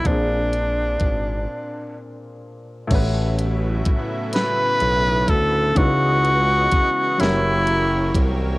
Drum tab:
CC |------|x-----|------|
HH |xxx---|xxxxxx|xxxxxx|
SD |------|---o--|---o--|
BD |o-o---|o-o--o|o-o--o|